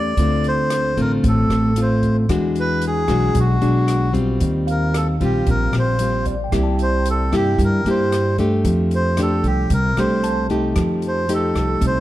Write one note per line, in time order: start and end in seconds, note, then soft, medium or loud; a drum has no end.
0.00 0.13 E2 medium
0.00 0.15 A3 medium
0.00 0.14 C#4 medium
0.00 0.14 G4 medium
0.00 0.14 A#4 medium
0.00 0.47 D5 loud
0.17 0.93 D2 medium
0.17 1.22 D3 medium
0.17 0.93 A3 medium
0.17 0.94 C4 medium
0.17 0.94 F4 medium
0.17 kick medium
0.17 closed hi-hat soft
0.44 1.00 C5 loud
0.44 closed hi-hat soft
0.70 cross-stick medium
0.70 closed hi-hat soft
0.97 1.22 A1 medium
0.97 1.72 A3 medium
0.97 1.72 C4 medium
0.97 1.73 F4 medium
0.97 1.12 A#4 medium
0.97 kick soft
0.97 closed hi-hat soft
1.24 1.48 A1 medium
1.24 2.27 A2 medium
1.24 kick medium
1.24 closed hi-hat soft
1.28 1.80 A4 medium
1.50 2.25 A1 medium
1.50 cross-stick medium
1.50 closed hi-hat soft
1.76 2.25 A3 soft
1.76 2.26 C4 medium
1.76 2.26 F4 medium
1.76 closed hi-hat soft
1.82 2.16 C5 medium
2.03 kick soft
2.03 closed hi-hat soft
2.29 3.05 E2 medium
2.29 3.33 E3 medium
2.29 3.05 G#3 medium
2.29 3.05 D4 medium
2.29 3.05 F#4 medium
2.29 kick medium
2.29 cross-stick medium
2.29 closed hi-hat soft
2.56 closed hi-hat soft
2.60 2.85 B4 medium
2.82 closed hi-hat soft
2.87 3.39 G#4 medium
3.08 3.33 B1 medium
3.08 3.57 G#3 medium
3.08 3.58 D4 medium
3.08 3.58 F#4 medium
3.08 kick soft
3.08 cross-stick medium
3.08 closed hi-hat soft
3.35 3.60 B1 loud
3.35 4.39 B2 medium
3.35 kick medium
3.35 closed hi-hat soft
3.40 4.13 F#4 medium
3.61 4.38 B1 medium
3.61 4.10 G#3 medium
3.61 4.10 D4 medium
3.61 4.11 F#4 medium
3.61 closed hi-hat soft
3.88 cross-stick medium
3.88 closed hi-hat soft
4.13 5.16 G3 medium
4.13 5.16 C4 medium
4.13 5.16 F4 medium
4.13 kick soft
4.13 closed hi-hat soft
4.40 5.17 D#2 medium
4.40 5.44 D#3 medium
4.40 kick medium
4.40 closed hi-hat soft
4.67 4.96 A#4 medium
4.67 5.75 F5 medium
4.67 closed hi-hat soft
4.94 5.07 A4 medium
4.94 cross-stick medium
4.94 closed hi-hat soft
5.20 5.45 A#1 medium
5.20 5.96 G3 medium
5.20 5.96 C4 medium
5.20 5.96 F4 medium
5.20 5.49 G4 medium
5.20 kick soft
5.20 closed hi-hat soft
5.47 5.71 A#1 loud
5.47 6.50 A#2 medium
5.47 5.76 A#4 medium
5.47 kick medium
5.47 closed hi-hat soft
5.73 6.49 A#1 medium
5.73 cross-stick medium
5.73 closed hi-hat soft
5.79 6.26 C5 medium
5.99 6.34 G3 medium
5.99 6.34 C4 soft
5.99 6.35 F4 medium
5.99 closed hi-hat soft
6.25 6.76 D5 soft
6.25 kick soft
6.25 closed hi-hat soft
6.44 6.91 G5 soft
6.52 7.28 C2 medium
6.52 7.56 C3 medium
6.52 7.28 A#3 medium
6.52 7.28 E4 medium
6.52 7.28 G4 medium
6.52 kick medium
6.52 cross-stick medium
6.52 closed hi-hat soft
6.63 7.08 A5 soft
6.79 7.08 C5 loud
6.79 closed hi-hat soft
7.06 closed hi-hat soft
7.10 7.35 A4 medium
7.32 7.57 G2 medium
7.32 7.81 A#3 medium
7.32 7.81 E4 medium
7.32 7.82 G4 medium
7.32 kick soft
7.32 cross-stick medium
7.32 closed hi-hat soft
7.36 7.61 G4 medium
7.58 7.83 G2 loud
7.58 8.62 G2 medium
7.58 kick medium
7.58 closed hi-hat soft
7.65 7.89 A#4 medium
7.85 8.60 G2 medium
7.85 8.34 A#3 medium
7.85 8.35 E4 medium
7.85 8.35 G4 medium
7.85 closed hi-hat soft
7.90 8.37 C5 medium
8.12 cross-stick medium
8.12 closed hi-hat soft
8.38 9.17 A3 medium
8.38 9.17 D4 medium
8.38 9.18 G4 medium
8.38 kick soft
8.38 closed hi-hat soft
8.64 9.40 F2 medium
8.64 9.68 F3 medium
8.64 kick medium
8.64 closed hi-hat soft
8.91 9.20 C5 medium
8.91 closed hi-hat soft
9.17 9.70 A3 medium
9.17 9.70 D4 medium
9.17 9.71 G4 medium
9.17 cross-stick medium
9.17 closed hi-hat soft
9.22 9.47 A4 medium
9.43 9.68 C2 medium
9.43 9.72 G4 medium
9.43 kick soft
9.43 closed hi-hat soft
9.70 9.95 C2 loud
9.70 10.74 C3 medium
9.70 9.99 A#4 medium
9.70 kick medium
9.70 closed hi-hat soft
9.97 10.72 C2 medium
9.97 10.46 A3 medium
9.97 10.46 D4 medium
9.97 10.46 G4 medium
9.97 10.47 C5 medium
9.97 cross-stick medium
9.97 closed hi-hat soft
10.24 10.99 A5 medium
10.24 closed hi-hat soft
10.50 11.25 A3 medium
10.50 11.25 D#4 medium
10.50 11.25 G4 medium
10.50 kick soft
10.50 closed hi-hat soft
10.75 11.51 F2 medium
10.75 11.79 F3 medium
10.75 kick medium
10.75 cross-stick medium
10.75 closed hi-hat soft
11.02 closed hi-hat soft
11.08 11.32 C5 medium
11.29 12.00 A3 medium
11.29 12.00 D#4 medium
11.29 12.00 G4 medium
11.29 closed hi-hat soft
11.34 11.86 A4 medium
11.55 11.80 C2 medium
11.55 kick soft
11.55 cross-stick medium
11.55 closed hi-hat soft
11.81 12.00 C2 loud
11.81 12.00 C3 medium
11.81 kick medium
11.81 closed hi-hat soft
11.87 12.00 C5 medium